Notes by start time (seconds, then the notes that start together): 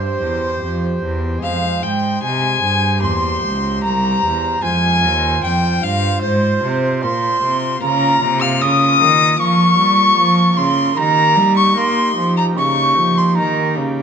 Already playing: G2 G4 C5
0.21 E2
0.62 F2
1.02 E2
1.38 G#3 G#4 C5
1.42 F2 F5
1.82 G#2 G5
2.22 C3 G#5
2.62 G2
2.97 A#3 G4 C5
3.01 E2 C6
3.42 C#2
3.82 C2 A#5
4.23 E2
4.59 G#3 F4 C5 G#5
4.64 F2 G#5
5.04 D#2
5.43 F2 G5
5.81 G2 F5
6.22 G#2 C5
6.62 C3
7.03 A#2 C6
7.42 C3
7.78 A#3 F4 A#4 A#5
7.82 C#3 A#5
8.21 C3
8.41 F5 F6
8.61 C#3 D#6
9.01 D#3
9.39 F3 C#6
9.78 G3
10.18 F3
10.56 C#3 C6
10.93 A#3 D#4 G4
10.97 D#3 A#5
11.36 G3
11.57 C#6
11.76 A#3 C6
12.16 F3
12.37 A#5
12.52 A#3 D#4 G4
12.56 C#3 C#6
12.95 F3
13.17 C6
13.35 D#3 A#5
13.77 C#3